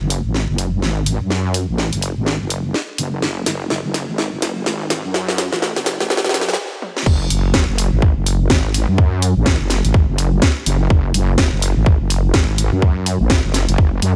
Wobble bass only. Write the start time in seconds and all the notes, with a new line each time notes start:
0.01 F#1
0.25 G#1
0.49 F#1
0.82 G#1
1.21 F#2
1.69 A1
1.93 F#1
2.17 G#1
2.41 F#1
2.98 F#1
3.22 F#1
3.46 F#1
3.70 F#1
3.85 F#1
4.09 G#1
4.33 F#1
4.66 G#1
5.04 F#2
5.52 A1
5.76 F#1
6.00 G#1
6.24 F#2
7.06 F#1
7.30 F#1
7.54 F#1
7.69 F#1
7.93 G#1
8.17 F#1
8.50 G#1
8.89 F#2
9.37 A1
9.61 F#1
9.85 G#1
10.09 F#1
10.66 F#1
10.90 F#1
11.14 F#1
11.38 F#1
11.53 F#1
11.77 G#1
12.01 F#1
12.34 G#1
12.73 F#2
13.21 A1
13.44 F#1
13.68 F#1
14.02 F#2